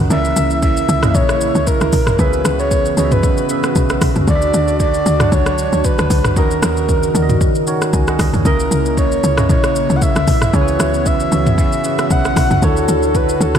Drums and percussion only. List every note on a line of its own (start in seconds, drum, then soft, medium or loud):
0.10 shaker medium
0.25 shaker medium
0.36 shaker loud
0.50 shaker medium
0.62 kick medium
0.62 shaker medium
0.77 shaker medium
0.89 shaker medium
1.03 cross-stick loud
1.03 mid tom loud
1.03 shaker medium
1.15 kick loud
1.15 shaker medium
1.29 cross-stick loud
1.29 shaker medium
1.41 shaker medium
1.55 shaker medium
1.67 kick loud
1.67 shaker medium
1.81 cross-stick medium
1.81 shaker soft
1.93 kick medium
1.93 open hi-hat medium
1.93 shaker medium
2.07 cross-stick loud
2.07 mid tom medium
2.07 shaker medium
2.19 kick loud
2.19 shaker medium
2.33 shaker medium
2.45 cross-stick loud
2.45 shaker loud
2.59 shaker medium
2.71 kick medium
2.71 shaker medium
2.85 shaker medium
2.97 shaker medium
3.11 mid tom loud
3.11 shaker medium
3.23 kick loud
3.23 shaker medium
3.37 shaker medium
3.49 shaker medium
3.63 cross-stick loud
3.63 shaker medium
3.75 kick loud
3.75 shaker medium
3.89 cross-stick loud
3.89 shaker soft
4.01 kick loud
4.01 cross-stick loud
4.01 open hi-hat medium
4.01 shaker medium
4.16 mid tom medium
4.16 shaker soft
4.27 kick loud
4.27 shaker medium
4.42 shaker medium
4.54 shaker loud
4.68 shaker medium
4.80 kick medium
4.80 shaker medium
4.94 shaker medium
5.06 shaker medium
5.20 cross-stick loud
5.20 mid tom loud
5.20 shaker medium
5.32 kick loud
5.32 shaker medium
5.46 cross-stick loud
5.46 shaker medium
5.58 shaker medium
5.73 shaker medium
5.84 kick loud
5.84 shaker medium
5.98 cross-stick loud
5.98 shaker soft
6.10 kick loud
6.10 open hi-hat medium
6.10 shaker medium
6.24 cross-stick loud
6.24 mid tom medium
6.24 shaker soft
6.36 kick loud
6.36 shaker medium
6.51 shaker medium
6.63 cross-stick loud
6.63 shaker loud
6.77 shaker medium
6.89 kick medium
6.89 shaker medium
7.03 shaker medium
7.15 shaker medium
7.29 mid tom loud
7.29 shaker medium
7.41 kick loud
7.41 shaker medium
7.55 shaker medium
7.67 shaker medium
7.82 cross-stick medium
7.82 shaker medium
7.93 kick loud
7.93 shaker medium
8.07 cross-stick medium
8.07 shaker soft
8.19 kick loud
8.19 cross-stick loud
8.19 open hi-hat medium
8.19 shaker medium
8.34 mid tom medium
8.34 shaker soft
8.45 kick loud
8.45 shaker medium
8.60 shaker medium
8.71 shaker loud
8.86 shaker medium
8.97 kick medium
8.97 shaker medium
9.12 shaker medium
9.24 shaker medium
9.37 cross-stick loud
9.37 mid tom loud
9.37 shaker medium
9.49 kick loud
9.49 shaker medium
9.64 cross-stick loud
9.64 shaker medium
9.76 shaker medium
9.90 shaker medium
10.02 kick loud
10.02 shaker medium
10.16 cross-stick medium
10.16 shaker medium
10.28 kick loud
10.28 open hi-hat medium
10.28 shaker medium
10.42 cross-stick loud
10.42 mid tom medium
10.42 shaker soft
10.54 kick loud
10.54 shaker medium
10.68 shaker medium
10.80 cross-stick loud
10.80 shaker loud
10.94 shaker medium
11.06 kick medium
11.06 shaker medium
11.20 shaker medium
11.32 shaker medium
11.46 mid tom loud
11.46 shaker medium
11.58 kick loud
11.58 shaker medium
11.72 shaker medium
11.84 shaker medium
11.99 cross-stick loud
11.99 shaker medium
12.11 kick loud
12.11 shaker medium
12.25 cross-stick medium
12.25 shaker medium
12.36 kick loud
12.36 cross-stick loud
12.36 open hi-hat medium
12.36 shaker medium
12.51 mid tom medium
12.51 shaker soft
12.62 kick loud
12.62 shaker medium
12.77 shaker medium
12.88 shaker loud
13.03 shaker medium
13.15 kick medium
13.15 shaker medium
13.29 shaker medium
13.41 shaker medium
13.55 cross-stick loud
13.55 mid tom loud
13.55 shaker medium